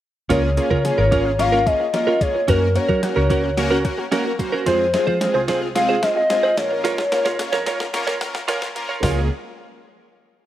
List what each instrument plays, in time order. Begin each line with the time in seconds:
0.29 fingered electric bass C#2, synth pluck G#3, analog polysynth A#3 C#4 F4 G#4, clean electric guitar C#4 F4 A#4, soft synth lead C#5, kick, snare, closed hi-hat
0.43 muted clean electric guitar stroke
0.57 analog polysynth A#3 C#4 F4 G#4, synth pluck C#4, muted clean electric guitar stroke, closed hi-hat
0.71 fingered electric bass C#3, clean electric guitar C#4 F4 A#4, kick
0.84 analog polysynth A#3 C#4 F4 G#4, synth pluck G#4, muted clean electric guitar stroke, snare, closed hi-hat
0.98 fingered electric bass G#1, clean electric guitar C#4 F4 A#4, synth pluck A#4
1.11 analog polysynth A#3 C#4 F4 G#4, clean electric guitar C#4 F4 A#4, synth pluck C#5, kick, closed hi-hat
1.25 synth pluck F5, muted clean electric guitar stroke
1.39 analog polysynth A#3 C#4 F4 A#4, synth pluck C#5, soft synth lead F5, muted clean electric guitar stroke, snare, closed hi-hat
1.52 clean electric guitar C#4 F4 A#4
1.66 analog polysynth A#3 C#4 F4 G#4, synth pluck G#4, soft synth lead D#5, kick, closed hi-hat
1.80 synth pluck F4, muted clean electric guitar stroke
1.94 analog polysynth A#3 C#4 F4 A#4, synth pluck C#4, soft synth lead D#5, muted clean electric guitar stroke, snare, closed hi-hat
2.07 synth pluck A#3, clean electric guitar C#4 F4 A#4
2.21 synth pluck G#3, analog polysynth A#3 C#4 F4 G#4, soft synth lead C#5, muted clean electric guitar stroke, kick, closed hi-hat
2.35 synth pluck A#3, muted clean electric guitar stroke
2.48 fingered electric bass F#2, synth pluck F#3, analog polysynth A#3 C#4 F#4 A#4, clean electric guitar C#4 F#4 A#4, soft synth lead A#4, kick, snare, closed hi-hat
2.61 muted clean electric guitar stroke
2.75 analog polysynth A#3 C#4 F#4 A#4, synth pluck C#4, soft synth lead C#5, muted clean electric guitar stroke, closed hi-hat
2.89 fingered electric bass F#3, clean electric guitar C#4 F#4 A#4, kick
3.02 analog polysynth A#3 C#4 F#4 A#4, synth pluck F#5, muted clean electric guitar stroke, snare, closed hi-hat
3.16 fingered electric bass C#2, clean electric guitar C#4 F#4 A#4, synth pluck A#5
3.30 analog polysynth A#3 C#4 F#4 A#4, clean electric guitar C#4 F#4 A#4, synth pluck C#6, kick, closed hi-hat
3.43 synth pluck F#6, muted clean electric guitar stroke
3.57 analog polysynth A#3 C#4 F#4 A#4, synth pluck C#6, muted clean electric guitar stroke, snare, closed hi-hat
3.71 clean electric guitar C#4 F#4 A#4
3.85 analog polysynth A#3 C#4 F#4 A#4, synth pluck F#5, kick, closed hi-hat
3.98 synth pluck F#4, muted clean electric guitar stroke
4.12 analog polysynth A#3 C#4 F#4 A#4, clean electric guitar C#4 F#4 A#4, synth pluck C#4, snare, closed hi-hat
4.25 synth pluck A#3, muted clean electric guitar stroke
4.39 synth pluck F#3, analog polysynth A#3 C#4 F#4 C5, muted clean electric guitar stroke, kick, closed hi-hat
4.52 synth pluck A#3, clean electric guitar C#4 F#4 A#4
4.66 fingered electric bass F2, synth pluck F3, analog polysynth G#3 C4 F4 G#4, clean electric guitar F4 G#4 C5, soft synth lead C5, kick, snare, closed hi-hat
4.93 analog polysynth G#3 C4 F4 G#4, synth pluck C4, muted clean electric guitar stroke, snare, closed hi-hat
5.07 fingered electric bass F3, clean electric guitar F4 G#4 C5, kick
5.21 analog polysynth G#3 C4 F4 G#4, synth pluck F5, muted clean electric guitar stroke, snare, closed hi-hat
5.34 fingered electric bass C2, clean electric guitar F4 G#4 C5, synth pluck G#5
5.48 analog polysynth G#3 C4 F4 G#4, clean electric guitar F4 G#4 C5, synth pluck C6, kick, snare, closed hi-hat
5.62 synth pluck F6, muted clean electric guitar stroke
5.75 analog polysynth G#3 C4 F4 G#4, soft synth lead F5, synth pluck C6, muted clean electric guitar stroke, snare, closed hi-hat
5.89 clean electric guitar F4 G#4 C5
6.02 analog polysynth G#3 C4 F4 G#4, soft synth lead D#5, synth pluck F5, muted clean electric guitar stroke, kick, snare, closed hi-hat
6.16 synth pluck F4, soft synth lead D#5, muted clean electric guitar stroke
6.30 analog polysynth G#3 C4 F4 G#4, synth pluck C4, muted clean electric guitar stroke, snare, closed hi-hat
6.43 synth pluck G#3, clean electric guitar F4 G#4 C5
6.57 fingered electric bass A#1, synth pluck F3, analog polysynth A#3 C#4 F4 A#4, soft synth lead C#5, muted clean electric guitar stroke, kick, snare, closed hi-hat
6.71 synth pluck A#3, muted clean electric guitar stroke
6.84 synth pluck F3, clean electric guitar F4 A#4 C#5, kick, snare, closed hi-hat
6.98 muted clean electric guitar stroke, snare
7.12 analog polysynth A#3 C#4 F4 A#4, synth pluck C#4, muted clean electric guitar stroke, snare, closed hi-hat
7.25 fingered electric bass A#2, clean electric guitar F4 A#4 C#5, kick, snare
7.39 analog polysynth A#3 C#4 F4 C#5, synth pluck F5, muted clean electric guitar stroke, snare, closed hi-hat
7.52 fingered electric bass F2, clean electric guitar F4 A#4 C#5, synth pluck A#5, snare
7.66 analog polysynth A#3 C#4 F4 A#4, clean electric guitar F4 A#4 C#5, synth pluck C#6, kick, snare, closed hi-hat
7.80 synth pluck F6, muted clean electric guitar stroke, snare
7.93 analog polysynth A#3 C#4 F4 A#4, synth pluck C#6, muted clean electric guitar stroke, snare, closed hi-hat
8.07 clean electric guitar F4 A#4 C#5, snare
8.21 analog polysynth A#3 C#4 F4 A#4, synth pluck F5, muted clean electric guitar stroke, kick, snare, closed hi-hat
8.34 synth pluck F4, muted clean electric guitar stroke, snare
8.48 analog polysynth A#3 C#4 F4 A#4, synth pluck C#4, clean electric guitar F4 A#4 C#5, snare, closed hi-hat
8.62 synth pluck A#3, muted clean electric guitar stroke, snare
8.75 synth pluck F3, analog polysynth A#3 C#4 F4 A#4, muted clean electric guitar stroke, closed hi-hat
8.89 synth pluck A#3, clean electric guitar F4 A#4 C#5
9.03 fingered electric bass C#2, synth pluck G#3 A#3 C#4 F4, analog polysynth A#3 C#4 F4 G#4, clean electric guitar F4 A#4 C#5, kick, snare, open hi-hat